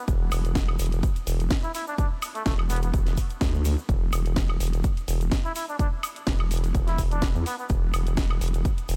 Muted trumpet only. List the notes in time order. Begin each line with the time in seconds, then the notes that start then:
1.64 E4
1.75 E4
1.88 D4
1.98 D4
2.35 A3
2.46 A3
2.70 B3
2.83 B3
5.45 E4
5.56 E4
5.69 D4
5.79 D4
6.88 E4
7.11 D4
7.46 B3
7.59 B3